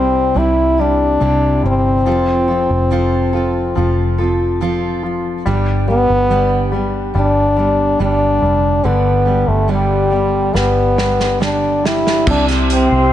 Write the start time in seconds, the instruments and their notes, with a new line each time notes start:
Already playing: fingered electric bass C2, grand piano C3 G3, steel-string acoustic guitar C4 E4 G4, french horn C4
0.34 fingered electric bass C2, grand piano C3, steel-string acoustic guitar G3 C4 E4 G4, french horn E4
0.78 grand piano G3, steel-string acoustic guitar C4 E4 G4, french horn D4
1.20 fingered electric bass C2, steel-string acoustic guitar C3 G3 C4 E4 G4, grand piano C3
1.63 fingered electric bass G1, grand piano G3, french horn C4
2.06 fingered electric bass F1, steel-string acoustic guitar F3 C4 F4 A4, grand piano F3
2.48 grand piano F3, steel-string acoustic guitar C4 F4 A4
2.70 fingered electric bass F1
2.91 steel-string acoustic guitar F3 C4 F4 A4, grand piano F3
3.33 grand piano F3, steel-string acoustic guitar C4 F4 A4
3.75 fingered electric bass F1, steel-string acoustic guitar F3 C4 F4 A4, grand piano F3
4.18 grand piano F3, steel-string acoustic guitar C4 F4 A4
4.61 steel-string acoustic guitar F3 C4 F4 A4, grand piano F3
5.03 grand piano F3
5.45 fingered electric bass G1, steel-string acoustic guitar G2 D3 G3 B3 D4 G4, grand piano G3
5.88 grand piano G3, steel-string acoustic guitar G3 B3 D4 G4, french horn B3
6.10 fingered electric bass G1
6.30 steel-string acoustic guitar G2 D3 G3 B3 D4 G4, grand piano G3
6.72 grand piano G3, steel-string acoustic guitar G3 B3 D4 G4
7.14 fingered electric bass G1, steel-string acoustic guitar G3 B3 D4 G4, grand piano G3, french horn D4
7.56 grand piano G3, steel-string acoustic guitar G3 B3 D4 G4
7.99 fingered electric bass G1, steel-string acoustic guitar G2 D3 G3 B3 D4 G4, grand piano G3, french horn D4
8.42 fingered electric bass F1, grand piano G3
8.83 fingered electric bass G1, steel-string acoustic guitar G2 D3 G3 B3 D4 G4, grand piano D3, french horn B3
9.25 grand piano G3, steel-string acoustic guitar G3 B3 D4 G4
9.48 fingered electric bass G1, french horn A3
9.68 steel-string acoustic guitar G2 D3 G3 B3 D4 G4, grand piano G3, french horn G3
10.10 grand piano G3, steel-string acoustic guitar G3 B3 D4 G4
10.53 fingered electric bass G1, steel-string acoustic guitar G3 B3 D4 G4, grand piano G3, french horn B3, snare
10.96 grand piano G3, steel-string acoustic guitar G3 B3 D4 G4, snare
11.20 snare
11.40 steel-string acoustic guitar G2 D3 G3 B3 D4 G4, grand piano G3, french horn D4, snare
11.84 grand piano G3, french horn E4, snare
12.07 snare
12.26 fingered electric bass C2, steel-string acoustic guitar C3 G3 C4 E4 G4, grand piano C3, french horn D4, ambient pad G4 C5 E5 C6, kick, crash
12.48 snare, closed hi-hat
12.70 french horn C4, closed hi-hat
12.92 fingered electric bass C2